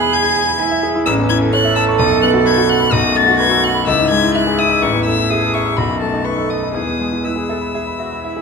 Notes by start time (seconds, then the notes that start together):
Already playing: E2 B2 E4 G#4 B4 E5 G#5 F#6
0.01 B5
0.13 G#5 G#6
0.24 B5
0.36 G#5
0.48 B5
0.58 E4 G#5
0.71 E5
0.83 G#4
0.95 E4
1.06 A1 C#4 E6
1.18 E2
1.29 E4 G#6
1.42 A4
1.52 A4 C#5 F#6
1.65 E5
1.76 A5 E6
1.89 C#6
1.98 B1 D#6
2.11 F#2
2.22 B3 F#6
2.34 F#4
2.45 B4 G#6
2.57 F#4
2.69 F#5 F#6
2.80 B5
2.93 B1 F#4 D#6
3.04 F#2
3.16 A3 A6
3.28 F#4
3.40 B4 G#6
3.51 A4
3.63 F#5 F#6
3.75 B5
3.87 C#2 E4 E6
3.99 G#2
4.11 G#3 G#6
4.24 E4
4.35 E5 F#6
4.47 G#4
4.58 E5 D#6
4.70 E6
4.82 A1 C#6
4.94 E2
5.05 A3 E6
5.18 E4
5.30 G#4 E5 D#6
5.42 A4
5.53 E5 C#6
5.66 E6
5.77 B1 F#4 B5
5.90 F#2
6.01 A3 A5
6.13 D#4
6.24 A4 B4 C#6
6.37 A4
6.49 D#5 D#6
6.63 B5
6.74 E2 G#4 D#6
6.87 B2
6.99 G#3
7.11 E4
7.23 E4 B4 E6
7.36 G#4
7.49 A4 E5
7.62 B5
7.74 G#4 E5
7.87 B5
7.99 F#4 E5
8.12 B5
8.24 E4 E5
8.37 G#4